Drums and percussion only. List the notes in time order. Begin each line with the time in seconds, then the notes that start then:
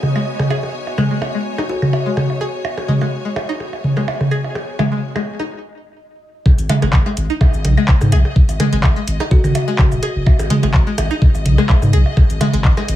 0.03 mid tom, percussion blips
0.16 percussion blips, claves
0.39 mid tom, percussion blips
0.50 percussion blips
0.63 percussion blips
0.87 percussion blips
0.98 mid tom, percussion blips, claves
1.22 percussion blips
1.58 percussion blips
1.82 mid tom, percussion blips, claves
1.93 percussion blips
2.17 mid tom, percussion blips
2.30 percussion blips
2.41 percussion blips
2.65 percussion blips, claves
2.78 percussion blips
2.88 mid tom
3.01 percussion blips
3.36 percussion blips
3.49 claves
3.60 percussion blips
3.73 percussion blips
3.84 mid tom
3.97 percussion blips
4.08 percussion blips
4.21 mid tom, percussion blips
4.32 claves
4.44 percussion blips
4.55 percussion blips
4.79 mid tom, percussion blips
5.16 percussion blips, claves
5.40 percussion blips
6.46 kick, percussion blips
6.58 closed hi-hat, shaker
6.69 closed hi-hat, mid tom, percussion blips
6.82 closed hi-hat, percussion blips
6.93 kick, clap, claves
7.06 percussion blips
7.17 closed hi-hat, shaker
7.41 kick, percussion blips
7.54 shaker
7.65 closed hi-hat, mid tom, percussion blips
7.78 percussion blips, claves
7.88 kick, clap
8.01 mid tom, percussion blips, shaker
8.12 closed hi-hat, percussion blips
8.25 percussion blips
8.36 kick
8.49 closed hi-hat, percussion blips, shaker
8.60 closed hi-hat, mid tom, percussion blips, claves
8.73 closed hi-hat
8.84 kick, clap, percussion blips
9.08 closed hi-hat, shaker
9.20 percussion blips
9.31 kick
9.44 mid tom, percussion blips, claves, shaker
9.55 closed hi-hat, percussion blips, shaker
9.79 kick, clap, mid tom, percussion blips
9.92 percussion blips, shaker
10.03 closed hi-hat, percussion blips
10.27 kick, percussion blips, claves
10.39 closed hi-hat, percussion blips, shaker
10.50 closed hi-hat, mid tom
10.63 closed hi-hat, percussion blips
10.74 kick, clap
10.98 closed hi-hat, percussion blips, shaker
11.11 claves
11.22 kick, percussion blips
11.35 percussion blips, shaker
11.46 closed hi-hat, mid tom
11.58 percussion blips
11.69 kick, clap, percussion blips
11.82 mid tom, percussion blips, shaker
11.93 closed hi-hat, claves
12.06 percussion blips
12.17 kick, percussion blips
12.30 closed hi-hat, shaker
12.41 closed hi-hat, mid tom, percussion blips
12.54 closed hi-hat
12.65 kick, clap
12.77 percussion blips, claves
12.88 closed hi-hat, shaker